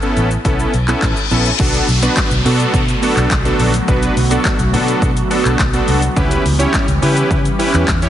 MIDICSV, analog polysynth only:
0, 0, Header, 1, 2, 480
1, 0, Start_track
1, 0, Key_signature, 2, "minor"
1, 0, Tempo, 571429
1, 1341, Time_signature, 4, 2, 24, 8
1, 6796, End_track
2, 0, Start_track
2, 0, Title_t, "Analog polysynth"
2, 0, Program_c, 0, 90
2, 20, Note_on_c, 0, 59, 93
2, 20, Note_on_c, 0, 61, 81
2, 22, Note_on_c, 0, 64, 82
2, 24, Note_on_c, 0, 69, 96
2, 249, Note_off_c, 0, 59, 0
2, 250, Note_off_c, 0, 61, 0
2, 251, Note_off_c, 0, 64, 0
2, 252, Note_off_c, 0, 69, 0
2, 381, Note_on_c, 0, 59, 86
2, 381, Note_on_c, 0, 61, 81
2, 384, Note_on_c, 0, 64, 79
2, 384, Note_on_c, 0, 69, 94
2, 610, Note_off_c, 0, 59, 0
2, 610, Note_off_c, 0, 61, 0
2, 612, Note_off_c, 0, 64, 0
2, 612, Note_off_c, 0, 69, 0
2, 740, Note_on_c, 0, 59, 87
2, 742, Note_on_c, 0, 61, 81
2, 743, Note_on_c, 0, 64, 82
2, 744, Note_on_c, 0, 69, 96
2, 970, Note_off_c, 0, 59, 0
2, 971, Note_off_c, 0, 61, 0
2, 971, Note_off_c, 0, 64, 0
2, 972, Note_off_c, 0, 69, 0
2, 1101, Note_on_c, 0, 59, 87
2, 1102, Note_on_c, 0, 61, 79
2, 1103, Note_on_c, 0, 64, 79
2, 1105, Note_on_c, 0, 69, 95
2, 1254, Note_off_c, 0, 59, 0
2, 1254, Note_off_c, 0, 61, 0
2, 1255, Note_off_c, 0, 64, 0
2, 1256, Note_off_c, 0, 69, 0
2, 1337, Note_on_c, 0, 59, 89
2, 1339, Note_on_c, 0, 62, 81
2, 1341, Note_on_c, 0, 66, 77
2, 1342, Note_on_c, 0, 69, 94
2, 1568, Note_off_c, 0, 59, 0
2, 1569, Note_off_c, 0, 62, 0
2, 1570, Note_off_c, 0, 66, 0
2, 1571, Note_off_c, 0, 69, 0
2, 1701, Note_on_c, 0, 59, 86
2, 1701, Note_on_c, 0, 62, 76
2, 1703, Note_on_c, 0, 66, 78
2, 1704, Note_on_c, 0, 71, 95
2, 1930, Note_off_c, 0, 59, 0
2, 1930, Note_off_c, 0, 62, 0
2, 1931, Note_off_c, 0, 66, 0
2, 1932, Note_off_c, 0, 71, 0
2, 2061, Note_on_c, 0, 59, 92
2, 2063, Note_on_c, 0, 62, 82
2, 2064, Note_on_c, 0, 66, 84
2, 2064, Note_on_c, 0, 69, 99
2, 2367, Note_off_c, 0, 59, 0
2, 2367, Note_off_c, 0, 62, 0
2, 2368, Note_off_c, 0, 66, 0
2, 2368, Note_off_c, 0, 69, 0
2, 2540, Note_on_c, 0, 59, 91
2, 2542, Note_on_c, 0, 62, 82
2, 2542, Note_on_c, 0, 66, 82
2, 2544, Note_on_c, 0, 69, 103
2, 2770, Note_off_c, 0, 59, 0
2, 2771, Note_off_c, 0, 62, 0
2, 2771, Note_off_c, 0, 66, 0
2, 2772, Note_off_c, 0, 69, 0
2, 2898, Note_on_c, 0, 59, 84
2, 2899, Note_on_c, 0, 62, 83
2, 2901, Note_on_c, 0, 66, 80
2, 2901, Note_on_c, 0, 69, 99
2, 3128, Note_off_c, 0, 59, 0
2, 3129, Note_off_c, 0, 62, 0
2, 3130, Note_off_c, 0, 66, 0
2, 3130, Note_off_c, 0, 69, 0
2, 3258, Note_on_c, 0, 59, 86
2, 3261, Note_on_c, 0, 62, 78
2, 3261, Note_on_c, 0, 66, 82
2, 3262, Note_on_c, 0, 71, 94
2, 3489, Note_off_c, 0, 59, 0
2, 3490, Note_off_c, 0, 62, 0
2, 3490, Note_off_c, 0, 66, 0
2, 3491, Note_off_c, 0, 71, 0
2, 3617, Note_on_c, 0, 59, 84
2, 3619, Note_on_c, 0, 62, 78
2, 3620, Note_on_c, 0, 66, 80
2, 3621, Note_on_c, 0, 69, 94
2, 3848, Note_off_c, 0, 59, 0
2, 3849, Note_off_c, 0, 62, 0
2, 3850, Note_off_c, 0, 66, 0
2, 3850, Note_off_c, 0, 69, 0
2, 3975, Note_on_c, 0, 59, 92
2, 3977, Note_on_c, 0, 62, 84
2, 3978, Note_on_c, 0, 66, 85
2, 3979, Note_on_c, 0, 69, 101
2, 4284, Note_off_c, 0, 59, 0
2, 4285, Note_off_c, 0, 62, 0
2, 4285, Note_off_c, 0, 66, 0
2, 4286, Note_off_c, 0, 69, 0
2, 4456, Note_on_c, 0, 59, 91
2, 4457, Note_on_c, 0, 62, 82
2, 4459, Note_on_c, 0, 66, 80
2, 4459, Note_on_c, 0, 69, 101
2, 4688, Note_off_c, 0, 59, 0
2, 4688, Note_off_c, 0, 62, 0
2, 4689, Note_off_c, 0, 66, 0
2, 4689, Note_off_c, 0, 69, 0
2, 4819, Note_on_c, 0, 59, 87
2, 4820, Note_on_c, 0, 62, 79
2, 4820, Note_on_c, 0, 66, 83
2, 4822, Note_on_c, 0, 69, 101
2, 5049, Note_off_c, 0, 59, 0
2, 5049, Note_off_c, 0, 62, 0
2, 5050, Note_off_c, 0, 66, 0
2, 5051, Note_off_c, 0, 69, 0
2, 5177, Note_on_c, 0, 61, 85
2, 5178, Note_on_c, 0, 64, 84
2, 5179, Note_on_c, 0, 67, 77
2, 5180, Note_on_c, 0, 71, 99
2, 5408, Note_off_c, 0, 61, 0
2, 5409, Note_off_c, 0, 64, 0
2, 5409, Note_off_c, 0, 67, 0
2, 5409, Note_off_c, 0, 71, 0
2, 5535, Note_on_c, 0, 61, 87
2, 5536, Note_on_c, 0, 64, 80
2, 5537, Note_on_c, 0, 67, 78
2, 5539, Note_on_c, 0, 73, 92
2, 5767, Note_off_c, 0, 61, 0
2, 5768, Note_off_c, 0, 64, 0
2, 5768, Note_off_c, 0, 67, 0
2, 5769, Note_off_c, 0, 73, 0
2, 5897, Note_on_c, 0, 61, 92
2, 5899, Note_on_c, 0, 64, 82
2, 5900, Note_on_c, 0, 67, 83
2, 5901, Note_on_c, 0, 71, 98
2, 6205, Note_off_c, 0, 61, 0
2, 6205, Note_off_c, 0, 64, 0
2, 6206, Note_off_c, 0, 67, 0
2, 6207, Note_off_c, 0, 71, 0
2, 6375, Note_on_c, 0, 61, 89
2, 6377, Note_on_c, 0, 64, 85
2, 6377, Note_on_c, 0, 67, 79
2, 6380, Note_on_c, 0, 71, 100
2, 6607, Note_off_c, 0, 61, 0
2, 6608, Note_off_c, 0, 64, 0
2, 6608, Note_off_c, 0, 67, 0
2, 6609, Note_off_c, 0, 71, 0
2, 6739, Note_on_c, 0, 61, 92
2, 6740, Note_on_c, 0, 64, 81
2, 6742, Note_on_c, 0, 67, 83
2, 6742, Note_on_c, 0, 73, 103
2, 6796, Note_off_c, 0, 61, 0
2, 6796, Note_off_c, 0, 64, 0
2, 6796, Note_off_c, 0, 67, 0
2, 6796, Note_off_c, 0, 73, 0
2, 6796, End_track
0, 0, End_of_file